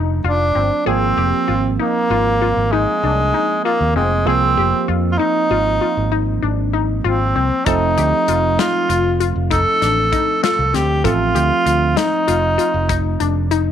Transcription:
Already playing: fingered electric bass F1, tine electric piano F3 A3 D4, synth arpeggio sound D#4
0.24 fingered electric bass F1, tenor saxophone D4, synth arpeggio sound F4
0.55 fingered electric bass G1, synth arpeggio sound C4
0.86 fingered electric bass G#1, tine electric piano F3 A#3 C4, tenor saxophone C4, synth arpeggio sound G#4
1.17 fingered electric bass F1, synth arpeggio sound G4
1.48 fingered electric bass G#1, synth arpeggio sound F4
1.79 tenor saxophone A#3, synth arpeggio sound D#4
2.10 fingered electric bass G#1, synth arpeggio sound F4
2.42 synth arpeggio sound F4
2.56 fingered electric bass G#1
2.72 tenor saxophone G#3, synth arpeggio sound D#4
3.03 fingered electric bass C2, synth arpeggio sound D4
3.34 synth arpeggio sound D#4
3.65 tenor saxophone A#3, synth arpeggio sound F4
3.81 fingered electric bass D#2
3.96 fingered electric bass F1, tenor saxophone G#3, synth arpeggio sound C4
4.25 fingered electric bass C2, tine electric piano F3 A#3 C4, tenor saxophone C4, synth arpeggio sound G#4
4.57 fingered electric bass F1, synth arpeggio sound G4
4.88 fingered electric bass F2, synth arpeggio sound F4
5.12 tenor saxophone F4
5.18 tenor saxophone D#4, synth arpeggio sound D#4
5.50 fingered electric bass G#1, synth arpeggio sound F4
5.81 synth arpeggio sound F4
5.97 fingered electric bass G#1
6.12 synth arpeggio sound D#4
6.42 fingered electric bass G#1, synth arpeggio sound D4
6.73 synth arpeggio sound D#4
7.04 fingered electric bass G#1, tenor saxophone C4, synth arpeggio sound F4
7.36 fingered electric bass C2, synth arpeggio sound C4
7.66 fingered electric bass F1, tine electric piano F3 A3 C4, tenor saxophone D#4, synth arpeggio sound A4, kick, closed hi-hat
7.98 fingered electric bass D2, synth arpeggio sound G4, closed hi-hat
8.28 fingered electric bass F1, synth arpeggio sound F4, closed hi-hat
8.59 synth arpeggio sound D#4, tenor saxophone F4, snare, closed hi-hat
8.89 fingered electric bass F1, synth arpeggio sound F4, closed hi-hat
9.20 synth arpeggio sound F4, closed hi-hat
9.36 fingered electric bass F1
9.50 synth arpeggio sound D#4, tenor saxophone A4, kick, closed hi-hat
9.82 fingered electric bass A1, synth arpeggio sound D4, snare, closed hi-hat
10.12 synth arpeggio sound D#4, kick, closed hi-hat
10.43 synth arpeggio sound F4, tenor saxophone A4, snare, closed hi-hat
10.59 fingered electric bass C2
10.74 fingered electric bass D2, synth arpeggio sound C4, tenor saxophone G4, snare, closed hi-hat
11.04 fingered electric bass A1, tine electric piano F3 A3 C4, tenor saxophone F4, synth arpeggio sound A4, kick, closed hi-hat
11.35 fingered electric bass D2, synth arpeggio sound G4, closed hi-hat
11.66 fingered electric bass D2, synth arpeggio sound F4, closed hi-hat
11.97 synth arpeggio sound D#4, tenor saxophone D#4, snare, closed hi-hat
12.28 fingered electric bass F1, synth arpeggio sound F4, closed hi-hat
12.58 synth arpeggio sound F4, closed hi-hat
12.74 fingered electric bass F1
12.89 synth arpeggio sound D#4, kick, closed hi-hat
13.20 fingered electric bass F1, synth arpeggio sound D4, closed hi-hat
13.51 synth arpeggio sound D#4, closed hi-hat

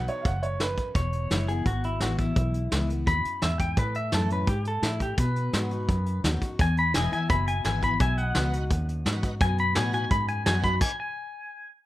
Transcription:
Already playing: steel-string acoustic guitar B2
0.08 steel-string acoustic guitar D#4 F#4, upright piano C#5, closed hi-hat
0.21 fingered electric bass F#1, upright piano F5, kick, closed hi-hat
0.25 steel-string acoustic guitar G#2, upright piano F#5
0.43 upright piano C#5, closed hi-hat
0.60 steel-string acoustic guitar F#2, upright piano B4, snare, closed hi-hat
0.77 kick, closed hi-hat
0.95 fingered electric bass E1, steel-string acoustic guitar E2, pedal steel guitar C#5, kick, closed hi-hat
1.13 closed hi-hat
1.30 fingered electric bass F#1, steel-string acoustic guitar E3 G#3 B3 E4, snare, closed hi-hat
1.48 steel-string acoustic guitar B3 E4, pedal steel guitar G#4, closed hi-hat
1.66 fingered electric bass G#1, steel-string acoustic guitar B2, pedal steel guitar F#4, kick, closed hi-hat
1.84 pedal steel guitar E4, closed hi-hat
2.00 fingered electric bass A1, steel-string acoustic guitar E3 G#3 B3 E4, pedal steel guitar F#4, snare, closed hi-hat
2.18 steel-string acoustic guitar B3 E4, pedal steel guitar E4, kick, closed hi-hat
2.36 fingered electric bass B1, steel-string acoustic guitar E2, kick, closed hi-hat
2.54 closed hi-hat
2.72 fingered electric bass C#2, steel-string acoustic guitar E3 G#3 B3 E4, snare, closed hi-hat
2.90 steel-string acoustic guitar B3 E4, closed hi-hat
3.07 fingered electric bass D#2, steel-string acoustic guitar F#2, pedal steel guitar B5, kick, closed hi-hat
3.25 muted fingered electric bass stroke, closed hi-hat
3.42 fingered electric bass E2, steel-string acoustic guitar G#2, pedal steel guitar E5, snare, closed hi-hat
3.59 pedal steel guitar G5, kick, closed hi-hat
3.77 fingered electric bass A2, steel-string acoustic guitar A2, pedal steel guitar B4, kick, closed hi-hat
3.94 pedal steel guitar E5, closed hi-hat
4.12 fingered electric bass F#2, steel-string acoustic guitar E3 A3 C#4 E4, pedal steel guitar A4, snare, closed hi-hat
4.29 steel-string acoustic guitar C#4 E4, pedal steel guitar B4, closed hi-hat
4.47 steel-string acoustic guitar G#2, fingered electric bass G#2, pedal steel guitar G4, kick, closed hi-hat
4.65 pedal steel guitar A4, closed hi-hat
4.82 fingered electric bass A2, steel-string acoustic guitar A2, pedal steel guitar E4, snare, closed hi-hat
5.00 pedal steel guitar G4, kick, closed hi-hat
5.17 fingered electric bass B2, steel-string acoustic guitar B2, pedal steel guitar B4, kick, closed hi-hat
5.36 closed hi-hat
5.53 fingered electric bass G#2, steel-string acoustic guitar F#3 B3 D#4 F#4, snare, closed hi-hat
5.71 steel-string acoustic guitar D#4 F#4, closed hi-hat
5.89 fingered electric bass F#2, steel-string acoustic guitar F#2, kick, closed hi-hat
6.06 closed hi-hat
6.24 fingered electric bass D#2, steel-string acoustic guitar F#3 B3 D#4 F#4, snare, closed hi-hat
6.42 steel-string acoustic guitar D#4 F#4, muted fingered electric bass stroke, kick, closed hi-hat
6.59 fingered electric bass E2, steel-string acoustic guitar E2, pedal steel guitar G#5, kick, closed hi-hat
6.77 pedal steel guitar B5, closed hi-hat
6.94 fingered electric bass E1, steel-string acoustic guitar E3 G#3 B3 E4, tonewheel organ B4 E5 G#5, pedal steel guitar D#5 G#5, snare, closed hi-hat
7.12 steel-string acoustic guitar B3 E4, pedal steel guitar G#5, closed hi-hat
7.16 pedal steel guitar E5
7.29 fingered electric bass F#1, steel-string acoustic guitar B2, pedal steel guitar B5, kick, closed hi-hat
7.47 pedal steel guitar G#5, closed hi-hat
7.64 fingered electric bass G#1, steel-string acoustic guitar E3 G#3 B3 E4, tonewheel organ B4 E5 G#5, pedal steel guitar G#5, snare, closed hi-hat
7.82 steel-string acoustic guitar B3 E4, pedal steel guitar B5, kick, closed hi-hat
8.00 fingered electric bass B1, steel-string acoustic guitar B2, pedal steel guitar E5 G#5, kick, closed hi-hat
8.18 pedal steel guitar F#5, closed hi-hat
8.22 pedal steel guitar D#5
8.27 pedal steel guitar F#5
8.35 fingered electric bass C#2, steel-string acoustic guitar F#3 B3 D#4 F#4, tonewheel organ B4 D#5 F#5, snare, closed hi-hat
8.53 steel-string acoustic guitar D#4 F#4, closed hi-hat
8.70 fingered electric bass D#2, steel-string acoustic guitar F#2, kick, closed hi-hat
8.89 closed hi-hat
9.05 fingered electric bass G#2, steel-string acoustic guitar F#3 B3 D#4 F#4, tonewheel organ B4 D#5 F#5, snare, closed hi-hat
9.23 steel-string acoustic guitar D#4 F#4, kick, closed hi-hat
9.40 fingered electric bass F#2, steel-string acoustic guitar B2, pedal steel guitar G#5, kick, closed hi-hat
9.58 pedal steel guitar B5, closed hi-hat
9.75 fingered electric bass A2, steel-string acoustic guitar F#3 B3 D#4 F#4, tonewheel organ B4 D#5 F#5, pedal steel guitar G#5, snare, closed hi-hat
9.93 steel-string acoustic guitar D#4 F#4, pedal steel guitar G#5, closed hi-hat
10.11 steel-string acoustic guitar F#2, fingered electric bass G#2, pedal steel guitar B5, kick, closed hi-hat
10.28 pedal steel guitar G#5, closed hi-hat
10.46 fingered electric bass F#2, steel-string acoustic guitar F#3 B3 D#4 F#4, tonewheel organ B4 D#5 F#5, pedal steel guitar G#5, snare, closed hi-hat
10.64 steel-string acoustic guitar D#4 F#4, pedal steel guitar B5, kick, closed hi-hat
10.81 pedal steel guitar G#5, kick, crash
11.00 pedal steel guitar G#5

